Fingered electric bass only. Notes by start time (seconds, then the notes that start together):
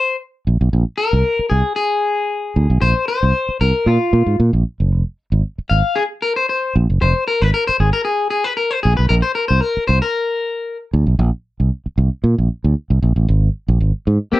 0.47 A#1
0.61 B1
0.73 A#1
1.13 C2
1.39 muted fingered electric bass stroke
1.51 C2
2.56 D2
2.70 B1
2.82 A#1
3.23 C2
3.49 muted fingered electric bass stroke
3.61 C2
3.86 A#2
4.13 A#2
4.26 G#2
4.40 A#2
4.53 A#1
4.80 F#1
4.92 F1
5.32 G#1
5.58 muted fingered electric bass stroke
5.71 G#1
6.76 A#1
6.90 F#1
7.02 F1
7.42 G#1
7.69 muted fingered electric bass stroke
7.80 G#1
8.85 A#1
8.99 B1
9.10 A#1
9.50 C2
9.77 muted fingered electric bass stroke
9.89 C2
10.93 D2
11.07 B1
11.19 A#1
11.60 C2
11.86 muted fingered electric bass stroke
11.98 C2
12.24 A#2
12.38 A#1
12.64 D2
12.90 C2
13.02 A#1
13.16 A1
13.28 G#1
13.68 A#1
13.80 G#1
14.07 G#2
14.33 muted fingered electric bass stroke